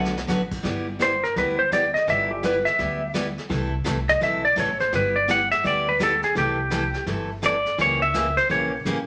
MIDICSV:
0, 0, Header, 1, 6, 480
1, 0, Start_track
1, 0, Key_signature, 1, "major"
1, 0, Tempo, 356718
1, 869, Time_signature, 4, 2, 24, 8
1, 12198, End_track
2, 0, Start_track
2, 0, Title_t, "Hollow-body jazz guitar"
2, 0, Program_c, 0, 26
2, 0, Note_on_c, 0, 78, 102
2, 647, Note_off_c, 0, 78, 0
2, 12198, End_track
3, 0, Start_track
3, 0, Title_t, "Electric slide guitar"
3, 0, Program_c, 1, 29
3, 1377, Note_on_c, 1, 72, 75
3, 1661, Note_off_c, 1, 72, 0
3, 1662, Note_on_c, 1, 70, 81
3, 1828, Note_off_c, 1, 70, 0
3, 1860, Note_on_c, 1, 71, 65
3, 2132, Note_off_c, 1, 71, 0
3, 2137, Note_on_c, 1, 72, 86
3, 2305, Note_off_c, 1, 72, 0
3, 2329, Note_on_c, 1, 74, 77
3, 2606, Note_off_c, 1, 74, 0
3, 2612, Note_on_c, 1, 75, 76
3, 2782, Note_off_c, 1, 75, 0
3, 2825, Note_on_c, 1, 76, 96
3, 3105, Note_off_c, 1, 76, 0
3, 3105, Note_on_c, 1, 67, 45
3, 3269, Note_off_c, 1, 67, 0
3, 3305, Note_on_c, 1, 71, 76
3, 3569, Note_on_c, 1, 76, 90
3, 3586, Note_off_c, 1, 71, 0
3, 4180, Note_off_c, 1, 76, 0
3, 5509, Note_on_c, 1, 75, 98
3, 5671, Note_off_c, 1, 75, 0
3, 5696, Note_on_c, 1, 76, 97
3, 5979, Note_off_c, 1, 76, 0
3, 5984, Note_on_c, 1, 74, 98
3, 6149, Note_off_c, 1, 74, 0
3, 6180, Note_on_c, 1, 73, 84
3, 6460, Note_off_c, 1, 73, 0
3, 6465, Note_on_c, 1, 72, 72
3, 6629, Note_off_c, 1, 72, 0
3, 6668, Note_on_c, 1, 71, 83
3, 6940, Note_on_c, 1, 74, 82
3, 6947, Note_off_c, 1, 71, 0
3, 7107, Note_off_c, 1, 74, 0
3, 7144, Note_on_c, 1, 78, 95
3, 7416, Note_off_c, 1, 78, 0
3, 7421, Note_on_c, 1, 76, 95
3, 7587, Note_off_c, 1, 76, 0
3, 7629, Note_on_c, 1, 74, 80
3, 7908, Note_off_c, 1, 74, 0
3, 7921, Note_on_c, 1, 71, 87
3, 8078, Note_off_c, 1, 71, 0
3, 8115, Note_on_c, 1, 69, 80
3, 8391, Note_off_c, 1, 69, 0
3, 8396, Note_on_c, 1, 68, 79
3, 8555, Note_off_c, 1, 68, 0
3, 8583, Note_on_c, 1, 67, 80
3, 9473, Note_off_c, 1, 67, 0
3, 10035, Note_on_c, 1, 74, 79
3, 10461, Note_off_c, 1, 74, 0
3, 10515, Note_on_c, 1, 73, 81
3, 10789, Note_off_c, 1, 73, 0
3, 10794, Note_on_c, 1, 76, 96
3, 11233, Note_off_c, 1, 76, 0
3, 11266, Note_on_c, 1, 72, 102
3, 11430, Note_off_c, 1, 72, 0
3, 11454, Note_on_c, 1, 73, 73
3, 11741, Note_off_c, 1, 73, 0
3, 12198, End_track
4, 0, Start_track
4, 0, Title_t, "Steel-string acoustic guitar"
4, 0, Program_c, 2, 25
4, 0, Note_on_c, 2, 50, 66
4, 0, Note_on_c, 2, 54, 74
4, 0, Note_on_c, 2, 59, 69
4, 0, Note_on_c, 2, 66, 64
4, 0, Note_on_c, 2, 71, 68
4, 193, Note_off_c, 2, 50, 0
4, 196, Note_off_c, 2, 59, 0
4, 197, Note_off_c, 2, 54, 0
4, 199, Note_off_c, 2, 66, 0
4, 201, Note_off_c, 2, 71, 0
4, 368, Note_on_c, 2, 50, 78
4, 379, Note_on_c, 2, 59, 98
4, 380, Note_on_c, 2, 54, 77
4, 386, Note_on_c, 2, 66, 95
4, 389, Note_on_c, 2, 71, 88
4, 534, Note_off_c, 2, 50, 0
4, 539, Note_off_c, 2, 54, 0
4, 539, Note_off_c, 2, 59, 0
4, 542, Note_off_c, 2, 66, 0
4, 544, Note_off_c, 2, 71, 0
4, 846, Note_on_c, 2, 55, 55
4, 847, Note_on_c, 2, 59, 55
4, 856, Note_on_c, 2, 64, 66
4, 856, Note_on_c, 2, 67, 60
4, 1150, Note_off_c, 2, 55, 0
4, 1150, Note_off_c, 2, 59, 0
4, 1155, Note_off_c, 2, 64, 0
4, 1155, Note_off_c, 2, 67, 0
4, 1333, Note_on_c, 2, 55, 69
4, 1338, Note_on_c, 2, 59, 83
4, 1338, Note_on_c, 2, 64, 75
4, 1350, Note_on_c, 2, 67, 75
4, 1496, Note_off_c, 2, 55, 0
4, 1498, Note_off_c, 2, 59, 0
4, 1499, Note_off_c, 2, 64, 0
4, 1504, Note_off_c, 2, 67, 0
4, 1832, Note_on_c, 2, 55, 58
4, 1837, Note_on_c, 2, 59, 67
4, 1840, Note_on_c, 2, 64, 69
4, 1847, Note_on_c, 2, 67, 66
4, 2123, Note_off_c, 2, 55, 0
4, 2125, Note_off_c, 2, 59, 0
4, 2127, Note_off_c, 2, 64, 0
4, 2130, Note_off_c, 2, 67, 0
4, 2310, Note_on_c, 2, 55, 85
4, 2316, Note_on_c, 2, 59, 76
4, 2319, Note_on_c, 2, 64, 85
4, 2319, Note_on_c, 2, 67, 84
4, 2465, Note_off_c, 2, 55, 0
4, 2467, Note_off_c, 2, 59, 0
4, 2469, Note_off_c, 2, 64, 0
4, 2469, Note_off_c, 2, 67, 0
4, 2783, Note_on_c, 2, 55, 63
4, 2793, Note_on_c, 2, 59, 63
4, 2797, Note_on_c, 2, 64, 64
4, 2802, Note_on_c, 2, 67, 66
4, 3078, Note_off_c, 2, 55, 0
4, 3084, Note_off_c, 2, 59, 0
4, 3085, Note_off_c, 2, 64, 0
4, 3088, Note_off_c, 2, 67, 0
4, 3269, Note_on_c, 2, 55, 65
4, 3271, Note_on_c, 2, 59, 83
4, 3281, Note_on_c, 2, 67, 80
4, 3285, Note_on_c, 2, 64, 87
4, 3424, Note_off_c, 2, 55, 0
4, 3425, Note_off_c, 2, 59, 0
4, 3430, Note_off_c, 2, 67, 0
4, 3432, Note_off_c, 2, 64, 0
4, 3748, Note_on_c, 2, 55, 58
4, 3748, Note_on_c, 2, 59, 63
4, 3750, Note_on_c, 2, 64, 68
4, 3758, Note_on_c, 2, 67, 74
4, 4041, Note_off_c, 2, 55, 0
4, 4041, Note_off_c, 2, 59, 0
4, 4042, Note_off_c, 2, 64, 0
4, 4046, Note_off_c, 2, 67, 0
4, 4223, Note_on_c, 2, 55, 87
4, 4228, Note_on_c, 2, 59, 83
4, 4238, Note_on_c, 2, 64, 86
4, 4242, Note_on_c, 2, 67, 85
4, 4381, Note_off_c, 2, 55, 0
4, 4384, Note_off_c, 2, 59, 0
4, 4389, Note_off_c, 2, 64, 0
4, 4390, Note_off_c, 2, 67, 0
4, 4696, Note_on_c, 2, 48, 57
4, 4702, Note_on_c, 2, 52, 58
4, 4707, Note_on_c, 2, 57, 65
4, 4714, Note_on_c, 2, 69, 64
4, 4717, Note_on_c, 2, 64, 63
4, 4995, Note_off_c, 2, 48, 0
4, 4998, Note_off_c, 2, 52, 0
4, 5000, Note_off_c, 2, 57, 0
4, 5004, Note_off_c, 2, 69, 0
4, 5006, Note_off_c, 2, 64, 0
4, 5170, Note_on_c, 2, 48, 83
4, 5174, Note_on_c, 2, 57, 79
4, 5179, Note_on_c, 2, 52, 81
4, 5180, Note_on_c, 2, 64, 76
4, 5182, Note_on_c, 2, 69, 83
4, 5335, Note_off_c, 2, 48, 0
4, 5337, Note_off_c, 2, 57, 0
4, 5339, Note_off_c, 2, 52, 0
4, 5340, Note_off_c, 2, 64, 0
4, 5341, Note_off_c, 2, 69, 0
4, 5659, Note_on_c, 2, 48, 66
4, 5663, Note_on_c, 2, 52, 67
4, 5664, Note_on_c, 2, 57, 61
4, 5666, Note_on_c, 2, 69, 72
4, 5671, Note_on_c, 2, 64, 74
4, 5957, Note_off_c, 2, 48, 0
4, 5959, Note_off_c, 2, 52, 0
4, 5959, Note_off_c, 2, 57, 0
4, 5960, Note_off_c, 2, 69, 0
4, 5963, Note_off_c, 2, 64, 0
4, 6133, Note_on_c, 2, 57, 98
4, 6134, Note_on_c, 2, 48, 80
4, 6135, Note_on_c, 2, 52, 89
4, 6138, Note_on_c, 2, 69, 94
4, 6142, Note_on_c, 2, 64, 91
4, 6296, Note_off_c, 2, 57, 0
4, 6297, Note_off_c, 2, 48, 0
4, 6297, Note_off_c, 2, 52, 0
4, 6299, Note_off_c, 2, 69, 0
4, 6301, Note_off_c, 2, 64, 0
4, 6632, Note_on_c, 2, 55, 59
4, 6635, Note_on_c, 2, 59, 64
4, 6635, Note_on_c, 2, 64, 65
4, 6639, Note_on_c, 2, 67, 72
4, 6924, Note_off_c, 2, 55, 0
4, 6925, Note_off_c, 2, 59, 0
4, 6925, Note_off_c, 2, 64, 0
4, 6927, Note_off_c, 2, 67, 0
4, 7104, Note_on_c, 2, 59, 74
4, 7105, Note_on_c, 2, 64, 84
4, 7106, Note_on_c, 2, 55, 73
4, 7111, Note_on_c, 2, 67, 84
4, 7262, Note_off_c, 2, 59, 0
4, 7263, Note_off_c, 2, 55, 0
4, 7263, Note_off_c, 2, 64, 0
4, 7265, Note_off_c, 2, 67, 0
4, 7584, Note_on_c, 2, 55, 63
4, 7588, Note_on_c, 2, 59, 59
4, 7589, Note_on_c, 2, 67, 69
4, 7592, Note_on_c, 2, 64, 65
4, 7880, Note_off_c, 2, 55, 0
4, 7881, Note_off_c, 2, 59, 0
4, 7882, Note_off_c, 2, 67, 0
4, 7883, Note_off_c, 2, 64, 0
4, 8062, Note_on_c, 2, 55, 81
4, 8071, Note_on_c, 2, 59, 74
4, 8075, Note_on_c, 2, 64, 90
4, 8079, Note_on_c, 2, 67, 97
4, 8221, Note_off_c, 2, 55, 0
4, 8225, Note_off_c, 2, 59, 0
4, 8228, Note_off_c, 2, 64, 0
4, 8230, Note_off_c, 2, 67, 0
4, 8546, Note_on_c, 2, 48, 62
4, 8551, Note_on_c, 2, 52, 57
4, 8556, Note_on_c, 2, 57, 71
4, 8559, Note_on_c, 2, 64, 60
4, 8559, Note_on_c, 2, 69, 68
4, 8840, Note_off_c, 2, 48, 0
4, 8843, Note_off_c, 2, 52, 0
4, 8846, Note_off_c, 2, 57, 0
4, 8847, Note_off_c, 2, 64, 0
4, 8847, Note_off_c, 2, 69, 0
4, 9019, Note_on_c, 2, 48, 69
4, 9025, Note_on_c, 2, 57, 75
4, 9028, Note_on_c, 2, 52, 83
4, 9028, Note_on_c, 2, 64, 77
4, 9032, Note_on_c, 2, 69, 81
4, 9179, Note_off_c, 2, 48, 0
4, 9182, Note_off_c, 2, 57, 0
4, 9184, Note_off_c, 2, 52, 0
4, 9184, Note_off_c, 2, 64, 0
4, 9186, Note_off_c, 2, 69, 0
4, 9512, Note_on_c, 2, 48, 60
4, 9513, Note_on_c, 2, 52, 57
4, 9517, Note_on_c, 2, 64, 64
4, 9522, Note_on_c, 2, 57, 60
4, 9528, Note_on_c, 2, 69, 65
4, 9804, Note_off_c, 2, 48, 0
4, 9804, Note_off_c, 2, 52, 0
4, 9806, Note_off_c, 2, 64, 0
4, 9809, Note_off_c, 2, 57, 0
4, 9811, Note_off_c, 2, 69, 0
4, 9985, Note_on_c, 2, 48, 85
4, 9993, Note_on_c, 2, 52, 86
4, 9994, Note_on_c, 2, 57, 80
4, 9994, Note_on_c, 2, 64, 92
4, 9996, Note_on_c, 2, 69, 84
4, 10143, Note_off_c, 2, 48, 0
4, 10147, Note_off_c, 2, 52, 0
4, 10147, Note_off_c, 2, 57, 0
4, 10147, Note_off_c, 2, 64, 0
4, 10148, Note_off_c, 2, 69, 0
4, 10467, Note_on_c, 2, 49, 63
4, 10479, Note_on_c, 2, 58, 65
4, 10481, Note_on_c, 2, 52, 65
4, 10483, Note_on_c, 2, 61, 64
4, 10490, Note_on_c, 2, 67, 69
4, 10761, Note_off_c, 2, 49, 0
4, 10767, Note_off_c, 2, 58, 0
4, 10768, Note_off_c, 2, 52, 0
4, 10769, Note_off_c, 2, 61, 0
4, 10773, Note_off_c, 2, 67, 0
4, 10951, Note_on_c, 2, 49, 83
4, 10954, Note_on_c, 2, 52, 79
4, 10957, Note_on_c, 2, 58, 76
4, 10961, Note_on_c, 2, 67, 86
4, 10963, Note_on_c, 2, 61, 77
4, 11106, Note_off_c, 2, 49, 0
4, 11107, Note_off_c, 2, 52, 0
4, 11109, Note_off_c, 2, 58, 0
4, 11111, Note_off_c, 2, 67, 0
4, 11112, Note_off_c, 2, 61, 0
4, 11428, Note_on_c, 2, 49, 69
4, 11432, Note_on_c, 2, 52, 64
4, 11432, Note_on_c, 2, 58, 66
4, 11439, Note_on_c, 2, 61, 74
4, 11440, Note_on_c, 2, 67, 75
4, 11722, Note_off_c, 2, 49, 0
4, 11724, Note_off_c, 2, 52, 0
4, 11724, Note_off_c, 2, 58, 0
4, 11727, Note_off_c, 2, 61, 0
4, 11728, Note_off_c, 2, 67, 0
4, 11917, Note_on_c, 2, 49, 85
4, 11919, Note_on_c, 2, 52, 83
4, 11925, Note_on_c, 2, 58, 80
4, 11926, Note_on_c, 2, 61, 93
4, 11932, Note_on_c, 2, 67, 86
4, 12069, Note_off_c, 2, 49, 0
4, 12070, Note_off_c, 2, 52, 0
4, 12073, Note_off_c, 2, 58, 0
4, 12073, Note_off_c, 2, 61, 0
4, 12077, Note_off_c, 2, 67, 0
4, 12198, End_track
5, 0, Start_track
5, 0, Title_t, "Upright bass"
5, 0, Program_c, 3, 32
5, 0, Note_on_c, 3, 35, 99
5, 316, Note_off_c, 3, 35, 0
5, 380, Note_on_c, 3, 33, 77
5, 792, Note_off_c, 3, 33, 0
5, 861, Note_on_c, 3, 31, 90
5, 1632, Note_off_c, 3, 31, 0
5, 1832, Note_on_c, 3, 38, 80
5, 2599, Note_off_c, 3, 38, 0
5, 2794, Note_on_c, 3, 31, 102
5, 3561, Note_off_c, 3, 31, 0
5, 3753, Note_on_c, 3, 38, 85
5, 4520, Note_off_c, 3, 38, 0
5, 4707, Note_on_c, 3, 36, 102
5, 5093, Note_off_c, 3, 36, 0
5, 5193, Note_on_c, 3, 36, 105
5, 5600, Note_off_c, 3, 36, 0
5, 5673, Note_on_c, 3, 35, 90
5, 6080, Note_off_c, 3, 35, 0
5, 6148, Note_on_c, 3, 33, 84
5, 6557, Note_off_c, 3, 33, 0
5, 6631, Note_on_c, 3, 31, 94
5, 7399, Note_off_c, 3, 31, 0
5, 7594, Note_on_c, 3, 38, 86
5, 8361, Note_off_c, 3, 38, 0
5, 8548, Note_on_c, 3, 36, 94
5, 9318, Note_off_c, 3, 36, 0
5, 9507, Note_on_c, 3, 31, 84
5, 10277, Note_off_c, 3, 31, 0
5, 10474, Note_on_c, 3, 37, 102
5, 11241, Note_off_c, 3, 37, 0
5, 11434, Note_on_c, 3, 34, 90
5, 11841, Note_off_c, 3, 34, 0
5, 11911, Note_on_c, 3, 33, 83
5, 12198, Note_off_c, 3, 33, 0
5, 12198, End_track
6, 0, Start_track
6, 0, Title_t, "Drums"
6, 64, Note_on_c, 9, 38, 58
6, 198, Note_off_c, 9, 38, 0
6, 232, Note_on_c, 9, 38, 83
6, 366, Note_off_c, 9, 38, 0
6, 386, Note_on_c, 9, 38, 56
6, 386, Note_on_c, 9, 44, 50
6, 521, Note_off_c, 9, 38, 0
6, 521, Note_off_c, 9, 44, 0
6, 688, Note_on_c, 9, 49, 73
6, 693, Note_on_c, 9, 36, 73
6, 822, Note_off_c, 9, 49, 0
6, 827, Note_off_c, 9, 36, 0
6, 860, Note_on_c, 9, 25, 46
6, 860, Note_on_c, 9, 38, 50
6, 864, Note_on_c, 9, 36, 20
6, 995, Note_off_c, 9, 38, 0
6, 998, Note_off_c, 9, 36, 0
6, 1348, Note_on_c, 9, 36, 20
6, 1350, Note_on_c, 9, 38, 67
6, 1350, Note_on_c, 9, 44, 60
6, 1483, Note_off_c, 9, 36, 0
6, 1484, Note_off_c, 9, 38, 0
6, 1484, Note_off_c, 9, 44, 0
6, 1667, Note_on_c, 9, 38, 42
6, 1801, Note_off_c, 9, 38, 0
6, 1830, Note_on_c, 9, 36, 26
6, 1832, Note_off_c, 9, 25, 0
6, 1832, Note_on_c, 9, 25, 50
6, 1832, Note_on_c, 9, 38, 48
6, 1965, Note_off_c, 9, 36, 0
6, 1966, Note_off_c, 9, 38, 0
6, 2311, Note_on_c, 9, 36, 25
6, 2314, Note_on_c, 9, 38, 74
6, 2314, Note_on_c, 9, 44, 61
6, 2446, Note_off_c, 9, 36, 0
6, 2449, Note_off_c, 9, 38, 0
6, 2449, Note_off_c, 9, 44, 0
6, 2627, Note_on_c, 9, 38, 38
6, 2761, Note_off_c, 9, 38, 0
6, 2793, Note_on_c, 9, 36, 19
6, 2797, Note_off_c, 9, 25, 0
6, 2797, Note_on_c, 9, 25, 50
6, 2797, Note_on_c, 9, 38, 45
6, 2928, Note_off_c, 9, 36, 0
6, 2931, Note_off_c, 9, 38, 0
6, 3268, Note_on_c, 9, 38, 76
6, 3268, Note_on_c, 9, 44, 62
6, 3270, Note_on_c, 9, 36, 25
6, 3402, Note_off_c, 9, 38, 0
6, 3402, Note_off_c, 9, 44, 0
6, 3404, Note_off_c, 9, 36, 0
6, 3574, Note_on_c, 9, 38, 40
6, 3708, Note_off_c, 9, 38, 0
6, 3750, Note_off_c, 9, 25, 0
6, 3750, Note_on_c, 9, 25, 51
6, 3750, Note_on_c, 9, 36, 22
6, 3750, Note_on_c, 9, 38, 45
6, 3885, Note_off_c, 9, 36, 0
6, 3885, Note_off_c, 9, 38, 0
6, 4229, Note_on_c, 9, 36, 23
6, 4232, Note_on_c, 9, 38, 72
6, 4232, Note_on_c, 9, 44, 59
6, 4364, Note_off_c, 9, 36, 0
6, 4367, Note_off_c, 9, 38, 0
6, 4367, Note_off_c, 9, 44, 0
6, 4543, Note_on_c, 9, 38, 42
6, 4678, Note_off_c, 9, 38, 0
6, 4710, Note_on_c, 9, 36, 24
6, 4714, Note_off_c, 9, 25, 0
6, 4714, Note_on_c, 9, 25, 56
6, 4714, Note_on_c, 9, 38, 46
6, 4844, Note_off_c, 9, 36, 0
6, 4848, Note_off_c, 9, 38, 0
6, 5185, Note_on_c, 9, 38, 72
6, 5185, Note_on_c, 9, 44, 64
6, 5188, Note_on_c, 9, 36, 24
6, 5319, Note_off_c, 9, 38, 0
6, 5319, Note_off_c, 9, 44, 0
6, 5322, Note_off_c, 9, 36, 0
6, 5494, Note_on_c, 9, 38, 45
6, 5629, Note_off_c, 9, 38, 0
6, 5669, Note_on_c, 9, 36, 25
6, 5672, Note_off_c, 9, 25, 0
6, 5672, Note_on_c, 9, 25, 56
6, 5672, Note_on_c, 9, 38, 42
6, 5803, Note_off_c, 9, 36, 0
6, 5806, Note_off_c, 9, 38, 0
6, 6150, Note_on_c, 9, 36, 23
6, 6153, Note_on_c, 9, 38, 71
6, 6153, Note_on_c, 9, 44, 53
6, 6284, Note_off_c, 9, 36, 0
6, 6288, Note_off_c, 9, 38, 0
6, 6288, Note_off_c, 9, 44, 0
6, 6453, Note_on_c, 9, 38, 42
6, 6587, Note_off_c, 9, 38, 0
6, 6623, Note_off_c, 9, 25, 0
6, 6623, Note_on_c, 9, 25, 52
6, 6623, Note_on_c, 9, 38, 49
6, 6628, Note_on_c, 9, 36, 24
6, 6758, Note_off_c, 9, 38, 0
6, 6763, Note_off_c, 9, 36, 0
6, 7109, Note_on_c, 9, 38, 75
6, 7109, Note_on_c, 9, 44, 63
6, 7112, Note_on_c, 9, 36, 25
6, 7244, Note_off_c, 9, 38, 0
6, 7244, Note_off_c, 9, 44, 0
6, 7246, Note_off_c, 9, 36, 0
6, 7418, Note_on_c, 9, 38, 43
6, 7553, Note_off_c, 9, 38, 0
6, 7592, Note_on_c, 9, 36, 27
6, 7598, Note_off_c, 9, 25, 0
6, 7598, Note_on_c, 9, 25, 51
6, 7598, Note_on_c, 9, 38, 48
6, 7727, Note_off_c, 9, 36, 0
6, 7733, Note_off_c, 9, 38, 0
6, 8071, Note_on_c, 9, 36, 24
6, 8072, Note_on_c, 9, 38, 73
6, 8072, Note_on_c, 9, 44, 65
6, 8205, Note_off_c, 9, 36, 0
6, 8207, Note_off_c, 9, 38, 0
6, 8207, Note_off_c, 9, 44, 0
6, 8371, Note_on_c, 9, 38, 40
6, 8506, Note_off_c, 9, 38, 0
6, 8551, Note_on_c, 9, 36, 18
6, 8557, Note_off_c, 9, 25, 0
6, 8557, Note_on_c, 9, 25, 51
6, 8557, Note_on_c, 9, 38, 51
6, 8686, Note_off_c, 9, 36, 0
6, 8691, Note_off_c, 9, 38, 0
6, 9029, Note_on_c, 9, 36, 27
6, 9029, Note_on_c, 9, 38, 78
6, 9029, Note_on_c, 9, 44, 65
6, 9163, Note_off_c, 9, 38, 0
6, 9163, Note_off_c, 9, 44, 0
6, 9164, Note_off_c, 9, 36, 0
6, 9334, Note_on_c, 9, 38, 48
6, 9469, Note_off_c, 9, 38, 0
6, 9504, Note_off_c, 9, 25, 0
6, 9504, Note_on_c, 9, 25, 56
6, 9504, Note_on_c, 9, 38, 48
6, 9509, Note_on_c, 9, 36, 22
6, 9639, Note_off_c, 9, 38, 0
6, 9643, Note_off_c, 9, 36, 0
6, 9990, Note_on_c, 9, 36, 24
6, 9991, Note_on_c, 9, 38, 71
6, 9991, Note_on_c, 9, 44, 51
6, 10125, Note_off_c, 9, 36, 0
6, 10126, Note_off_c, 9, 38, 0
6, 10126, Note_off_c, 9, 44, 0
6, 10301, Note_on_c, 9, 38, 40
6, 10436, Note_off_c, 9, 38, 0
6, 10471, Note_on_c, 9, 36, 22
6, 10475, Note_off_c, 9, 25, 0
6, 10475, Note_on_c, 9, 25, 60
6, 10475, Note_on_c, 9, 38, 51
6, 10606, Note_off_c, 9, 36, 0
6, 10609, Note_off_c, 9, 38, 0
6, 10954, Note_on_c, 9, 36, 27
6, 10955, Note_on_c, 9, 38, 75
6, 10955, Note_on_c, 9, 44, 65
6, 11088, Note_off_c, 9, 36, 0
6, 11090, Note_off_c, 9, 38, 0
6, 11090, Note_off_c, 9, 44, 0
6, 11262, Note_on_c, 9, 38, 45
6, 11396, Note_off_c, 9, 38, 0
6, 11434, Note_on_c, 9, 36, 22
6, 11438, Note_off_c, 9, 25, 0
6, 11438, Note_on_c, 9, 25, 55
6, 11438, Note_on_c, 9, 38, 47
6, 11568, Note_off_c, 9, 36, 0
6, 11573, Note_off_c, 9, 38, 0
6, 11913, Note_on_c, 9, 36, 21
6, 11917, Note_on_c, 9, 38, 72
6, 11917, Note_on_c, 9, 44, 61
6, 12048, Note_off_c, 9, 36, 0
6, 12051, Note_off_c, 9, 38, 0
6, 12051, Note_off_c, 9, 44, 0
6, 12198, Note_off_c, 9, 25, 0
6, 12198, End_track
0, 0, End_of_file